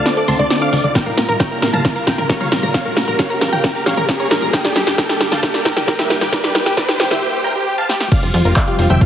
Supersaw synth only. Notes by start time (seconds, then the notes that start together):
0.06 D5
0.17 D5
0.28 A5 C6
0.39 D5
0.51 D5
0.62 F5 D6
0.73 D5
0.84 D5
0.95 A#4 G5
1.06 A#4
1.18 A#4
1.29 A#4
1.40 A#4 G5
1.51 A#4
1.62 A#4
1.73 F5 A5
1.85 A#4
1.96 A#4
2.07 A#4 G5
2.18 A#4
2.29 A#4
2.40 C#5 F5
2.52 A#4
2.63 A#4
2.74 C#5 F5
2.85 A#4
2.97 A#4
3.08 A#4
3.19 C#5 F5
3.30 A#4
3.41 A#4
3.53 A#4 G5
3.64 A#4
3.75 A#4
3.86 C#5 F5
3.97 A#4
4.08 A#4
4.20 A#4 C#5
4.31 A#4
4.42 A#4
4.53 A#4 G5
4.65 G4
4.76 G4
4.87 G4
4.98 A#4 G5
5.09 G4
5.21 G4
5.32 F5 A5
5.43 G4
5.54 G4
5.65 A#4 G5
5.76 G4
5.88 G4
5.99 G4 E5
6.10 G4
6.21 G4
6.32 A#4 D5
6.44 G4
6.55 G4
6.66 G4
6.77 A#4 D5
6.88 G4
6.99 G4
7.10 G4 E5
7.22 G4
7.33 G4
7.44 A#4 G5
7.55 G4
7.67 G4
7.78 F5 A5
7.89 G4
8.00 G4
8.12 D5 F5
8.23 F4
8.34 F4
8.45 F4
8.56 D5 F5
8.68 F4
8.79 F4
8.90 E5 G5
9.01 F4